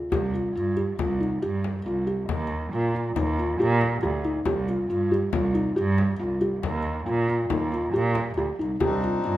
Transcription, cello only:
0.12 C2
0.55 G2
0.99 C2
1.43 G2
1.86 C2
2.30 D#2
2.73 A#2
3.17 D#2
3.60 A#2
4.03 D2
4.46 C2
4.90 G2
5.33 C2
5.76 G2
6.20 C2
6.63 D#2
7.07 A#2
7.50 D#2
7.94 A#2
8.37 D2
8.59 C2
8.81 C2
9.24 G2

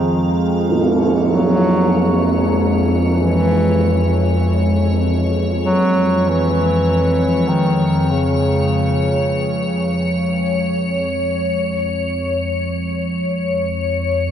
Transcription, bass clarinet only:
Already playing: D#3
1.32 F#3
3.19 E3
5.66 F#3
6.29 E3
7.48 D#3
8.11 C#3
14.27 B2

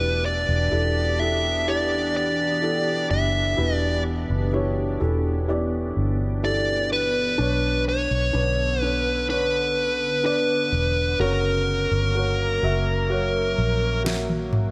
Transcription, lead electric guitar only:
Already playing: B4
0.26 D5
1.19 E5
1.68 D5
2.17 D5
3.11 E5
3.75 D5
6.45 D5
6.93 B4
7.89 C#5
8.81 B4
9.30 B4
10.26 B4
11.21 A#4

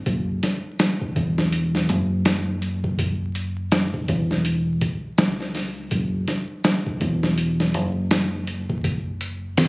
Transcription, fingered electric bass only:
0.06 F#1
1.16 E1
1.89 F#1
4.08 E1
5.18 C#2
5.91 F#1
7.01 E1
7.74 F#1

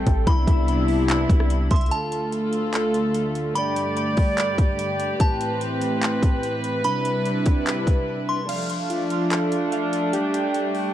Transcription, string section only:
Already playing: G3 A3 C4
0.27 C3 G3 B3 D4 E4
1.91 D2 D3 A3 F4 A4
3.56 G2 G4 D5
5.20 A2 E3 C4 B4
6.84 C3 G3 D4 E4
8.49 F3 A3 D4
10.14 G3

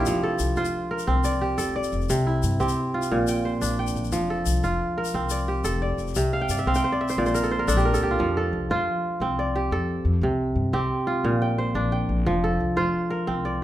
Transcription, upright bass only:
0.06 F1
0.40 C2
0.56 F1
1.08 C2
1.58 F1
1.92 F1
2.09 C2
2.43 G2
2.60 C2
3.11 A#1
3.62 A#1
3.96 A#1
4.12 F1
4.46 C2
4.63 F1
5.14 C2
5.64 F1
5.98 F1
6.16 C2
6.49 G2
6.66 C2
7.17 A#1
7.68 A#1
8.03 C2
8.19 F2
8.53 C2
8.70 F2
9.20 C2
9.71 F2
10.05 F2
10.21 C2
10.56 G2
10.73 C2
11.24 A#1
11.75 A#1
12.09 A#1
12.26 F1
12.60 C2
12.76 F1
13.28 C2

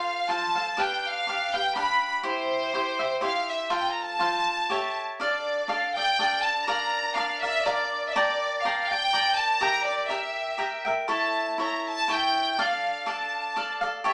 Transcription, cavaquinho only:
Already playing: F4 A4 C5 F5
0.29 F4 A4 C5 F5
0.56 A4 C5 F5
0.77 D4 G4 B4 F5
1.27 D4 G4 B4 F5
1.54 G4 B4 F5
1.76 D4 G4 B4 F5
2.23 E4 G4 C5 E5
2.74 E4 G4 C5 E5
2.99 G4 C5 E5
3.21 E4 G4 C5 E5
3.70 F4 A4 C5 F5
4.19 F4 A4 C5 F5
4.70 G4 A4 C#5 E5
5.20 D4 A4 D5 F5
5.68 D4 A4 D5 F5
5.96 A4 D5 F5
6.19 D4 A4 D5 F5
6.67 D4 A#4 D5 F5
7.16 D4 A#4 D5 F5
7.42 A#4 D5 F5
7.66 D4 A#4 D5 F5
8.16 A#4 D5 G5 A5
8.65 A#4 D5 G5 A5
8.91 D5 G5 A5
9.13 A#4 D5 G5 A5
9.61 G4 A#4 E5 G5
10.09 G4 A#4 E5 G5
10.58 G4 A#4 E5 G5
10.85 A#4 E5 G5
11.08 E4 A4 C#5 E5
11.58 E4 A4 C#5 E5
12.08 E4 A4 C#5 E5
12.58 D4 A4 D5 F5
13.06 D4 A4 D5 F5
13.56 D4 A4 D5 F5
13.81 A4 D5 F5
14.04 G4 A4 C#5 E5

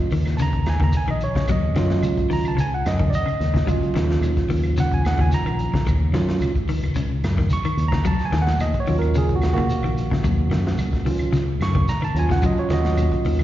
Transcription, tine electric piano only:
0.37 A5
0.42 A#5
0.69 G#5
0.84 A#5
0.97 G#5
1.11 D#5
1.24 C#5
1.51 D#5
1.76 F#3 C#4 F4
2.33 A#5
2.48 A5
2.60 G#5
2.74 F#5
2.87 D#5
3.10 D5
3.15 D#5
3.66 F#3 C#4 F4
4.80 F#5
4.94 G#5
5.07 F#5
5.21 G#5
5.34 A#5
6.13 F#3 C#4 F4
7.53 C#6
7.88 A#5
8.07 A5
8.25 G#5
8.42 F#5
8.61 D#5
8.80 C#5
8.87 F#3 C#4 F4
8.99 A#4
9.18 G#4
9.36 F#4
9.53 A#3 F#4
11.05 F#3 C#4 F4
11.63 C#6
11.89 A#5
12.05 A5
12.16 F#3 C#4 F4 G#5
12.32 F#5
12.42 F#3 C#4 F4 D#5
12.59 C#5
12.73 F#4 D#5

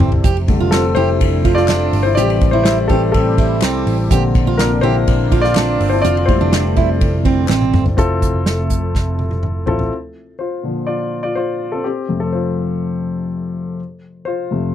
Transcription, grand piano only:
Already playing: E3 G3 C4 E4 G4 A4 C5 D5
0.48 D3 G3 A3
0.71 C4 A4
0.95 E4 C5
1.55 F4 D5
2.03 E4 C5
2.15 E3 G3 C4 G4 D5
2.51 E4 C5
2.63 E4 C5
2.88 E3 G3 C4 A4
3.12 C4 A4
4.10 D3 A#3 C4
4.57 D4 A#4
4.81 D3 A#3 C4 E4 C5
5.42 F4 D5
5.89 E4 C5
6.02 F4 D5
6.26 E3 G3 A3 E4 C5
7.97 C4 E4 F4 A4
9.66 C4 E4 F4 A4
10.39 F4 C5
10.63 A#2 D3 F3
10.87 F4 D5
11.23 F4 D5
11.35 F4 C5
11.72 C4 A4
11.84 C4 G4
12.09 F2 C3 A3
12.20 C4 A4
12.33 F4 C5
14.25 F4 C5
14.51 F2 C3 A3

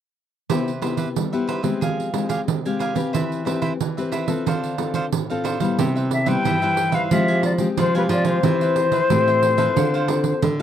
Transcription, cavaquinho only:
0.50 G4 B4 C5 E5
0.82 G4 B4 C5 E5
0.97 G4 B4 C5 E5
1.32 B4 C5 E5
1.48 G4 B4 C5 E5
1.63 B4 C5 E5
1.81 G#4 F5 G#5
2.29 G4 G#4 F5 G#5
2.66 G4 F5 G#5
2.79 G4 G#4 F5 G#5
2.95 G4 F5 G#5
3.13 E4 B4 C5 E5
3.45 E4 B4 C5 E5
3.62 E4 B4 C5 E5
3.97 B4 C5 E5
4.12 E4 B4 C5 E5
4.28 B4 C5 E5
4.46 D4 A4 C5 F5
4.94 D4 A4 C5 F5
5.30 A4 C5 F5
5.44 D4 A4 C5 F5
5.60 A4 C5 F5
5.78 G4 B4 C5 E5
5.96 B4 C5 E5
6.11 muted cavaquinho stroke
6.26 B4 C5 E5
6.44 G4 B4 C5 E5
6.62 B4 C5 E5
6.92 B4 C5 E5
7.11 G4 G#4 F5 G#5
7.28 G4 F5 G#5
7.44 muted cavaquinho stroke
7.95 G4 F5 G#5
8.10 G4 G#4 F5 G#5
8.26 G4 F5 G#5
8.45 E4 B4 C5 E5
8.61 B4 C5 E5
8.76 muted cavaquinho stroke
8.92 B4 C5 E5
9.10 E4 B4 C5 E5
9.27 C5 E5
9.58 B4 C5 E5
9.76 D4 A4 C5 F5
9.94 A4 C5 F5
10.09 muted cavaquinho stroke

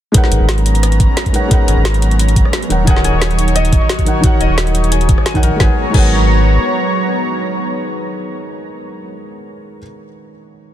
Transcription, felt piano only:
0.12 G#3 D#4 A#4 B4
0.16 C#5 F#5
1.33 G#3 D#4 A#4 B4 C#5 F#5
1.48 G#3 D#4 A#4 B4
1.53 C#5 F#5
2.69 D#3 D#4 A#4 C#5 F#5
2.84 D#3 D#4 A#4
2.88 C#5 F#5
4.05 D#3 D#4 A#4 C#5 F#5
4.21 D#3 D#4 A#4
4.25 C#5 F#5
5.34 D#3 D#4 A#4 C#5 F#5
5.42 D#3 D#4 A#4 C#5 F#5
5.56 G#3 D#4 A#4
5.61 B4 C#5 F#5
5.90 G#3 D#4 A#4
5.95 B4 C#5 F#5

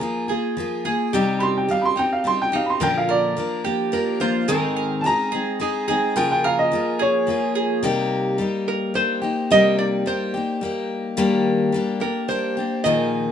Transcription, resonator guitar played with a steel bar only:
1.13 G4
2.81 A#4
3.93 A#4
4.21 C5
4.48 A#4
5.61 G#4
6.16 A#4
8.68 A#4
8.95 C5
9.52 D#5
9.79 D5
10.07 C5
12.01 A#4
12.29 C5
12.84 D#5

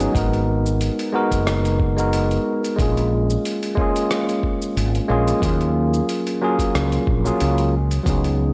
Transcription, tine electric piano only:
Already playing: F#3 B3 C#4 D#4 G#4
0.12 G#3 B3 D#4
0.17 F#4 A#4
1.13 G#3 B3 D#4 F#4 A#4
1.96 G#3 B3 D#4 F#4 A#4
2.76 G#3 A#3 C#4
2.80 F4 G#4
3.75 G#3 A#3 C#4
3.80 F4 G#4
5.08 G#3 A#3 C#4 F4 G#4
5.40 F#3 A#3 C#4
5.45 F4 G#4
6.41 F#3 A#3 C#4 F4 G#4
7.25 F#3 A#3 C#4 F4 G#4
8.04 F#3 B3 C#4
8.08 D#4 G#4

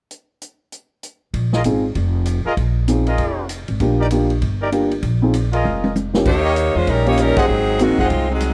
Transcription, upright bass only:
1.34 A#1
1.65 G#1
1.96 F1
2.57 A#1
3.18 F1
3.68 G#1
3.80 A#1
4.41 G1
5.03 A#1
5.64 F1
6.26 D#2
6.75 E2
6.87 A#1
7.37 muted upright bass stroke
7.48 G#1
7.89 C2
7.99 F#1
8.10 C2

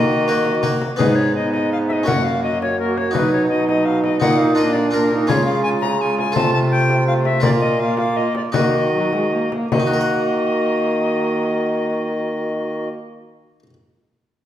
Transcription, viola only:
Already playing: A#3
0.99 B3
1.36 B3
2.08 A#3
2.79 A#3
3.14 F#3
3.50 F#3
4.22 A#3
4.57 A#3
4.93 A#3
5.29 G#3
6.00 G#3
6.36 A3
7.08 A3
7.44 A#3
7.82 A#3
8.55 A#3
8.93 F#3
9.13 G#3
9.32 A#3
9.52 A#3
9.74 A#3

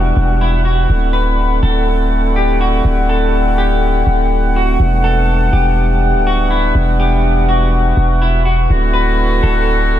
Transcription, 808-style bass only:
Already playing: E1
0.17 E1
0.90 D1
1.63 D1
2.85 D1
4.07 D1
4.80 E1
5.53 E1
6.14 D1
6.75 E1
7.97 E1
8.70 D1
9.44 D1

